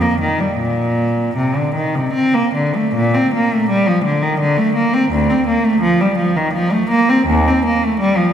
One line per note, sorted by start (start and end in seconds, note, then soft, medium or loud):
0.01 0.20 A#3 medium
0.21 0.40 D#3 soft
0.40 0.60 G3 soft
0.58 1.35 A#2 medium
1.37 1.56 C3 soft
1.55 1.75 D3 soft
1.75 1.94 D#3 soft
1.95 2.15 C3 soft
2.13 2.33 C4 medium
2.34 2.54 A#3 medium
2.55 2.74 D3 soft
2.75 2.95 A3 soft
2.95 3.14 A#2 medium
3.14 3.33 C4 medium
3.35 3.52 A#3 medium
3.53 3.70 A3 medium
3.70 3.87 G3 medium
3.88 4.05 F3 medium
4.05 4.22 D3 soft
4.22 4.40 D#3 medium
4.40 4.58 D3 medium
4.57 4.75 A3 medium
4.76 4.93 A#3 medium
4.94 5.11 C4 medium
5.12 5.29 D2 medium
5.30 5.47 C4 medium
5.47 5.64 A#3 medium
5.65 5.82 A3 medium
5.81 5.99 F3 medium
6.01 6.18 G3 medium
6.18 6.35 F3 soft
6.36 6.54 D#3 medium
6.54 6.71 F3 medium
6.72 6.90 A3 medium
6.91 7.08 A#3 medium
7.09 7.28 C4 medium
7.27 7.46 D#2 medium
7.48 7.65 C4 medium
7.66 7.82 A#3 medium
7.84 8.01 A3 medium
8.00 8.17 G3 medium
8.17 8.33 F3 medium